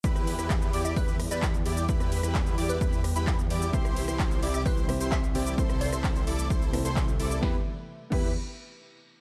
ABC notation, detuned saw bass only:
X:1
M:4/4
L:1/16
Q:1/4=130
K:Em
V:1 name="Detuned saw bass" clef=bass
E,,3 E,,3 E,,2 z3 E,,3 E,,2 | E,,3 E,,3 E,,2 E,,3 E,,3 E,,2 | C,,3 C,,3 C,,2 z3 C,,3 C,,2 | z3 C,,3 C,,2 C,,3 C,,3 C,,2 |
E,, z4 z E,,2 z8 |]